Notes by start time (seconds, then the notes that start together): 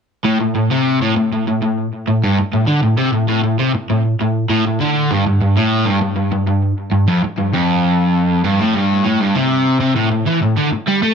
0.25 A2
0.41 A2
0.55 A2
0.71 C3
1.02 A2
1.17 A2
1.33 A2
1.48 A2
1.62 A2
2.08 A2
2.24 G2
2.38 muted overdriven electric guitar stroke
2.53 A2
2.67 D3
2.83 A2
2.97 C3
3.13 A2
3.28 A2
3.44 A2
3.59 C3
3.75 muted overdriven electric guitar stroke
3.90 A2
4.21 A2
4.49 A2
4.66 A2
4.80 D3
5.11 G2
5.26 G2
5.41 G2
5.57 A2
5.86 G2
6.02 G2
6.16 G2
6.32 G2
6.47 G2
6.92 G2
7.08 F2
7.24 muted overdriven electric guitar stroke
7.38 G2
7.53 F2
8.44 G2
8.60 A2
8.74 G2
9.04 A2
9.21 G2
9.36 C3
9.80 C3
9.96 A2
10.11 A2
10.27 E3
10.43 A2
10.58 D3
10.73 muted overdriven electric guitar stroke
10.88 G3
11.03 A3